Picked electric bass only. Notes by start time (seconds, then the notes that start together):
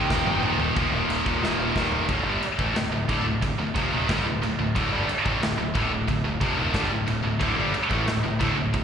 0.10 D#1
0.26 G1
0.43 D#1
0.59 D#1
0.76 D#1
0.92 D#1
1.09 D#1
1.26 D#1
1.41 D#1
1.59 D#1
1.75 D#1
1.91 D#1
2.09 D1
2.24 G1
2.41 muted picked electric bass stroke
2.59 A1
2.74 D1
2.92 D1
3.09 D1
3.24 D1
3.43 D1
3.58 D1
3.76 F1
3.92 D#1
4.09 G1
4.24 D1
4.42 D1
4.58 D1
4.76 D1
4.92 G1
5.08 muted picked electric bass stroke
5.26 A1
5.42 D1
5.59 D1
5.75 D1
5.91 D1
6.08 D1
6.24 D1
6.41 F1
6.57 D#1
6.74 G1
6.91 D1
7.08 D1
7.25 D1
7.41 D1
7.58 G1
7.75 muted picked electric bass stroke
7.90 A1
8.07 D1
8.24 D1
8.41 D1
8.57 D1
8.74 D1